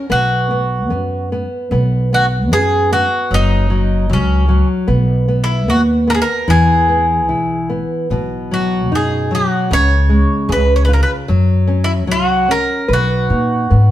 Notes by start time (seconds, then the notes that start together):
0.10 B1 B3 F#4
0.51 B3
0.90 F#2 B3
1.32 B3
1.71 B1 B3
2.13 B3 F#4
2.50 F#2 B3 G#4
2.92 B3 F#4
3.31 F#1 F#3 D#4
3.70 F#3
4.09 C#2 F#3 C#4
4.48 F#3
4.87 B1 B3
5.28 B3
5.44 E4
5.68 D#2 B3 F#4
6.07 B3 A#4
6.15 G#4
6.22 A#4
6.48 E2 E3 G#4
6.89 B3
7.28 B1 E4
7.70 B3
8.10 B1 B2
8.51 F#3 F#4
8.91 F#2 D#4
8.95 G#4
9.31 F#3 F#4
9.71 C#2 C#3 C#5
10.09 G#3
10.49 C#2 G#4 B4
10.76 C#5
10.85 F4 B4
10.93 A#4
11.03 B4
11.28 F#2 F#3
11.67 C#4
11.84 E4
12.07 C2 F#3
12.12 F#4
12.48 C#4 A#4
12.88 B1 B4
12.93 F#4
13.30 A#2 D#4
13.70 G#2 B3